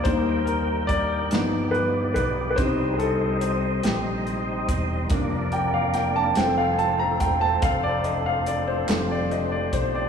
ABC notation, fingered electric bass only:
X:1
M:6/8
L:1/8
Q:3/8=48
K:Fmix
V:1 name="Fingered electric bass" clef=bass
E,,3 G,,,2 =B,,, | C,,3 B,,,2 =E,,, | F,,,3 F,,,2 =E,,, | F,,,3 F,,,2 _C,, |]